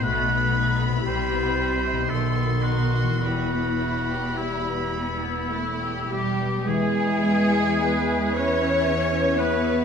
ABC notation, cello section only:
X:1
M:3/4
L:1/8
Q:1/4=55
K:Em
V:1 name="Cello section" clef=bass
B,,2 C,2 B,,2 | E,,4- E,, G, | [K:E] G,3 C2 B, |]